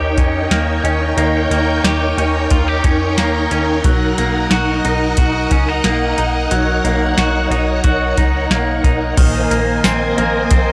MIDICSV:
0, 0, Header, 1, 5, 480
1, 0, Start_track
1, 0, Tempo, 666667
1, 847, Time_signature, 4, 2, 24, 8
1, 7718, End_track
2, 0, Start_track
2, 0, Title_t, "String machine"
2, 0, Program_c, 0, 50
2, 0, Note_on_c, 0, 63, 82
2, 0, Note_on_c, 0, 70, 72
2, 0, Note_on_c, 0, 73, 67
2, 0, Note_on_c, 0, 79, 78
2, 2738, Note_off_c, 0, 79, 0
2, 2739, Note_off_c, 0, 73, 0
2, 2764, Note_on_c, 0, 75, 70
2, 2765, Note_on_c, 0, 78, 79
2, 4666, Note_off_c, 0, 75, 0
2, 4689, Note_on_c, 0, 73, 72
2, 6577, Note_off_c, 0, 70, 0
2, 6577, Note_off_c, 0, 78, 0
2, 6579, Note_off_c, 0, 63, 0
2, 6589, Note_off_c, 0, 73, 0
2, 6610, Note_on_c, 0, 58, 83
2, 6610, Note_on_c, 0, 70, 72
2, 6611, Note_on_c, 0, 72, 70
2, 6611, Note_on_c, 0, 75, 75
2, 6611, Note_on_c, 0, 80, 83
2, 7718, Note_off_c, 0, 58, 0
2, 7718, Note_off_c, 0, 70, 0
2, 7718, Note_off_c, 0, 72, 0
2, 7718, Note_off_c, 0, 75, 0
2, 7718, Note_off_c, 0, 80, 0
2, 7718, End_track
3, 0, Start_track
3, 0, Title_t, "Clean electric guitar"
3, 0, Program_c, 1, 27
3, 0, Note_on_c, 1, 58, 55
3, 0, Note_on_c, 1, 61, 50
3, 0, Note_on_c, 1, 67, 52
3, 120, Note_off_c, 1, 61, 0
3, 129, Note_on_c, 1, 61, 54
3, 366, Note_off_c, 1, 58, 0
3, 369, Note_on_c, 1, 58, 56
3, 600, Note_off_c, 1, 61, 0
3, 608, Note_on_c, 1, 61, 54
3, 845, Note_off_c, 1, 58, 0
3, 848, Note_on_c, 1, 58, 74
3, 1085, Note_off_c, 1, 58, 0
3, 1088, Note_on_c, 1, 58, 59
3, 1319, Note_off_c, 1, 67, 0
3, 1328, Note_on_c, 1, 67, 59
3, 1561, Note_off_c, 1, 61, 0
3, 1569, Note_on_c, 1, 61, 50
3, 1806, Note_off_c, 1, 67, 0
3, 1809, Note_on_c, 1, 65, 53
3, 1929, Note_off_c, 1, 65, 0
3, 1929, Note_on_c, 1, 67, 56
3, 2041, Note_off_c, 1, 61, 0
3, 2050, Note_on_c, 1, 61, 58
3, 2288, Note_off_c, 1, 58, 0
3, 2291, Note_on_c, 1, 58, 57
3, 2522, Note_off_c, 1, 61, 0
3, 2530, Note_on_c, 1, 61, 57
3, 2772, Note_on_c, 1, 54, 70
3, 2816, Note_off_c, 1, 67, 0
3, 2817, Note_off_c, 1, 61, 0
3, 3009, Note_off_c, 1, 58, 0
3, 3012, Note_on_c, 1, 58, 56
3, 3254, Note_on_c, 1, 66, 63
3, 3493, Note_on_c, 1, 63, 52
3, 3723, Note_off_c, 1, 66, 0
3, 3732, Note_on_c, 1, 66, 59
3, 3968, Note_off_c, 1, 63, 0
3, 3971, Note_on_c, 1, 61, 58
3, 4093, Note_off_c, 1, 61, 0
3, 4093, Note_on_c, 1, 63, 50
3, 4208, Note_off_c, 1, 58, 0
3, 4211, Note_on_c, 1, 58, 58
3, 4442, Note_off_c, 1, 63, 0
3, 4451, Note_on_c, 1, 63, 53
3, 4681, Note_off_c, 1, 54, 0
3, 4690, Note_on_c, 1, 54, 73
3, 4925, Note_off_c, 1, 58, 0
3, 4927, Note_on_c, 1, 58, 55
3, 5159, Note_off_c, 1, 66, 0
3, 5168, Note_on_c, 1, 66, 61
3, 5405, Note_off_c, 1, 63, 0
3, 5408, Note_on_c, 1, 63, 54
3, 5637, Note_off_c, 1, 66, 0
3, 5646, Note_on_c, 1, 66, 54
3, 5885, Note_off_c, 1, 63, 0
3, 5888, Note_on_c, 1, 63, 54
3, 6125, Note_off_c, 1, 58, 0
3, 6128, Note_on_c, 1, 58, 54
3, 6362, Note_off_c, 1, 63, 0
3, 6365, Note_on_c, 1, 63, 55
3, 6603, Note_off_c, 1, 54, 0
3, 6606, Note_on_c, 1, 51, 82
3, 6655, Note_off_c, 1, 66, 0
3, 6844, Note_off_c, 1, 58, 0
3, 6847, Note_on_c, 1, 58, 63
3, 7084, Note_off_c, 1, 63, 0
3, 7087, Note_on_c, 1, 60, 60
3, 7323, Note_off_c, 1, 58, 0
3, 7326, Note_on_c, 1, 58, 59
3, 7557, Note_off_c, 1, 60, 0
3, 7566, Note_on_c, 1, 60, 58
3, 7718, Note_off_c, 1, 51, 0
3, 7718, Note_off_c, 1, 58, 0
3, 7718, Note_off_c, 1, 60, 0
3, 7718, End_track
4, 0, Start_track
4, 0, Title_t, "Analog synth bass"
4, 0, Program_c, 2, 38
4, 0, Note_on_c, 2, 39, 99
4, 127, Note_on_c, 2, 41, 89
4, 138, Note_off_c, 2, 39, 0
4, 338, Note_off_c, 2, 41, 0
4, 367, Note_on_c, 2, 39, 94
4, 578, Note_off_c, 2, 39, 0
4, 603, Note_on_c, 2, 39, 84
4, 816, Note_off_c, 2, 39, 0
4, 843, Note_on_c, 2, 39, 114
4, 1056, Note_off_c, 2, 39, 0
4, 1084, Note_on_c, 2, 39, 94
4, 1297, Note_off_c, 2, 39, 0
4, 1325, Note_on_c, 2, 39, 100
4, 1537, Note_off_c, 2, 39, 0
4, 1567, Note_on_c, 2, 39, 92
4, 1778, Note_off_c, 2, 39, 0
4, 1809, Note_on_c, 2, 39, 103
4, 2020, Note_off_c, 2, 39, 0
4, 2047, Note_on_c, 2, 41, 82
4, 2290, Note_on_c, 2, 39, 103
4, 2301, Note_off_c, 2, 41, 0
4, 2500, Note_off_c, 2, 39, 0
4, 2530, Note_on_c, 2, 39, 82
4, 2740, Note_off_c, 2, 39, 0
4, 2769, Note_on_c, 2, 35, 113
4, 2979, Note_off_c, 2, 35, 0
4, 3011, Note_on_c, 2, 35, 94
4, 3221, Note_off_c, 2, 35, 0
4, 3251, Note_on_c, 2, 35, 89
4, 3460, Note_off_c, 2, 35, 0
4, 3492, Note_on_c, 2, 35, 100
4, 3701, Note_off_c, 2, 35, 0
4, 3728, Note_on_c, 2, 35, 107
4, 3939, Note_off_c, 2, 35, 0
4, 3968, Note_on_c, 2, 37, 80
4, 4179, Note_off_c, 2, 37, 0
4, 4212, Note_on_c, 2, 35, 94
4, 4421, Note_off_c, 2, 35, 0
4, 4453, Note_on_c, 2, 35, 83
4, 4661, Note_off_c, 2, 35, 0
4, 4691, Note_on_c, 2, 35, 104
4, 4900, Note_off_c, 2, 35, 0
4, 4930, Note_on_c, 2, 35, 96
4, 5140, Note_off_c, 2, 35, 0
4, 5167, Note_on_c, 2, 35, 90
4, 5378, Note_off_c, 2, 35, 0
4, 5406, Note_on_c, 2, 35, 96
4, 5617, Note_off_c, 2, 35, 0
4, 5647, Note_on_c, 2, 35, 100
4, 5858, Note_off_c, 2, 35, 0
4, 5888, Note_on_c, 2, 37, 77
4, 6099, Note_off_c, 2, 37, 0
4, 6126, Note_on_c, 2, 35, 85
4, 6338, Note_off_c, 2, 35, 0
4, 6367, Note_on_c, 2, 35, 80
4, 6578, Note_off_c, 2, 35, 0
4, 6606, Note_on_c, 2, 34, 117
4, 6818, Note_off_c, 2, 34, 0
4, 6847, Note_on_c, 2, 34, 97
4, 7058, Note_off_c, 2, 34, 0
4, 7090, Note_on_c, 2, 34, 98
4, 7300, Note_off_c, 2, 34, 0
4, 7331, Note_on_c, 2, 34, 101
4, 7540, Note_off_c, 2, 34, 0
4, 7567, Note_on_c, 2, 34, 96
4, 7718, Note_off_c, 2, 34, 0
4, 7718, End_track
5, 0, Start_track
5, 0, Title_t, "Drums"
5, 127, Note_on_c, 9, 36, 79
5, 127, Note_on_c, 9, 42, 48
5, 199, Note_off_c, 9, 36, 0
5, 199, Note_off_c, 9, 42, 0
5, 368, Note_on_c, 9, 38, 94
5, 369, Note_on_c, 9, 42, 57
5, 440, Note_off_c, 9, 38, 0
5, 441, Note_off_c, 9, 42, 0
5, 610, Note_on_c, 9, 42, 46
5, 682, Note_off_c, 9, 42, 0
5, 847, Note_on_c, 9, 42, 62
5, 919, Note_off_c, 9, 42, 0
5, 1090, Note_on_c, 9, 42, 50
5, 1162, Note_off_c, 9, 42, 0
5, 1328, Note_on_c, 9, 38, 100
5, 1331, Note_on_c, 9, 42, 71
5, 1400, Note_off_c, 9, 38, 0
5, 1403, Note_off_c, 9, 42, 0
5, 1572, Note_on_c, 9, 42, 41
5, 1644, Note_off_c, 9, 42, 0
5, 1804, Note_on_c, 9, 42, 62
5, 1807, Note_on_c, 9, 36, 76
5, 1876, Note_off_c, 9, 42, 0
5, 1879, Note_off_c, 9, 36, 0
5, 2046, Note_on_c, 9, 42, 47
5, 2048, Note_on_c, 9, 36, 80
5, 2118, Note_off_c, 9, 42, 0
5, 2120, Note_off_c, 9, 36, 0
5, 2288, Note_on_c, 9, 38, 84
5, 2289, Note_on_c, 9, 42, 54
5, 2360, Note_off_c, 9, 38, 0
5, 2361, Note_off_c, 9, 42, 0
5, 2529, Note_on_c, 9, 42, 49
5, 2601, Note_off_c, 9, 42, 0
5, 2767, Note_on_c, 9, 42, 66
5, 2768, Note_on_c, 9, 36, 95
5, 2839, Note_off_c, 9, 42, 0
5, 2840, Note_off_c, 9, 36, 0
5, 3010, Note_on_c, 9, 42, 50
5, 3082, Note_off_c, 9, 42, 0
5, 3245, Note_on_c, 9, 38, 96
5, 3248, Note_on_c, 9, 42, 69
5, 3317, Note_off_c, 9, 38, 0
5, 3320, Note_off_c, 9, 42, 0
5, 3490, Note_on_c, 9, 42, 45
5, 3562, Note_off_c, 9, 42, 0
5, 3722, Note_on_c, 9, 42, 66
5, 3728, Note_on_c, 9, 36, 84
5, 3794, Note_off_c, 9, 42, 0
5, 3800, Note_off_c, 9, 36, 0
5, 3966, Note_on_c, 9, 42, 52
5, 3967, Note_on_c, 9, 36, 78
5, 4038, Note_off_c, 9, 42, 0
5, 4039, Note_off_c, 9, 36, 0
5, 4205, Note_on_c, 9, 38, 87
5, 4206, Note_on_c, 9, 42, 59
5, 4277, Note_off_c, 9, 38, 0
5, 4278, Note_off_c, 9, 42, 0
5, 4448, Note_on_c, 9, 42, 48
5, 4520, Note_off_c, 9, 42, 0
5, 4688, Note_on_c, 9, 42, 67
5, 4760, Note_off_c, 9, 42, 0
5, 4931, Note_on_c, 9, 42, 51
5, 5003, Note_off_c, 9, 42, 0
5, 5167, Note_on_c, 9, 38, 105
5, 5169, Note_on_c, 9, 42, 65
5, 5239, Note_off_c, 9, 38, 0
5, 5241, Note_off_c, 9, 42, 0
5, 5411, Note_on_c, 9, 42, 40
5, 5483, Note_off_c, 9, 42, 0
5, 5643, Note_on_c, 9, 42, 61
5, 5647, Note_on_c, 9, 36, 79
5, 5715, Note_off_c, 9, 42, 0
5, 5719, Note_off_c, 9, 36, 0
5, 5886, Note_on_c, 9, 42, 48
5, 5887, Note_on_c, 9, 36, 78
5, 5958, Note_off_c, 9, 42, 0
5, 5959, Note_off_c, 9, 36, 0
5, 6126, Note_on_c, 9, 38, 92
5, 6127, Note_on_c, 9, 42, 54
5, 6198, Note_off_c, 9, 38, 0
5, 6199, Note_off_c, 9, 42, 0
5, 6366, Note_on_c, 9, 36, 77
5, 6368, Note_on_c, 9, 42, 48
5, 6438, Note_off_c, 9, 36, 0
5, 6440, Note_off_c, 9, 42, 0
5, 6606, Note_on_c, 9, 36, 103
5, 6606, Note_on_c, 9, 42, 68
5, 6606, Note_on_c, 9, 49, 78
5, 6678, Note_off_c, 9, 36, 0
5, 6678, Note_off_c, 9, 42, 0
5, 6678, Note_off_c, 9, 49, 0
5, 6849, Note_on_c, 9, 42, 58
5, 6921, Note_off_c, 9, 42, 0
5, 7085, Note_on_c, 9, 38, 110
5, 7087, Note_on_c, 9, 42, 71
5, 7087, Note_on_c, 9, 54, 71
5, 7157, Note_off_c, 9, 38, 0
5, 7159, Note_off_c, 9, 42, 0
5, 7159, Note_off_c, 9, 54, 0
5, 7329, Note_on_c, 9, 42, 44
5, 7401, Note_off_c, 9, 42, 0
5, 7563, Note_on_c, 9, 42, 72
5, 7567, Note_on_c, 9, 36, 87
5, 7635, Note_off_c, 9, 42, 0
5, 7639, Note_off_c, 9, 36, 0
5, 7718, End_track
0, 0, End_of_file